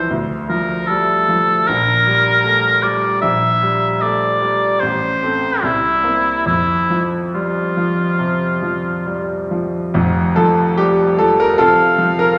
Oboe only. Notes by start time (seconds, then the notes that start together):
Already playing: C5
0.49 A#4
0.87 A4
1.68 A#4
2.83 D5
3.22 E5
4.01 D5
4.80 C5
5.63 E4
6.47 E4
7.34 F4
11.59 F5